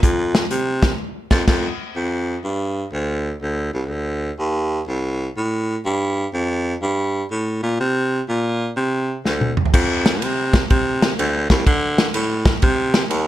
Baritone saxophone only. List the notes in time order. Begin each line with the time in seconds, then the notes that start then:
0.03 F2
0.51 C3
1.31 F2
1.48 F2
1.96 F2
2.44 G2
2.93 D2
3.42 D2
3.73 C2
3.90 D2
4.39 D#2
4.88 C2
5.37 A2
5.85 G2
6.34 F2
6.82 G2
7.31 A2
7.63 A#2
7.80 C3
8.28 A#2
8.77 C3
9.25 D2
9.74 F2
10.22 C3
10.70 C3
11.19 D2
11.50 C2
11.66 D3
12.14 A2
12.63 C3
13.10 D#2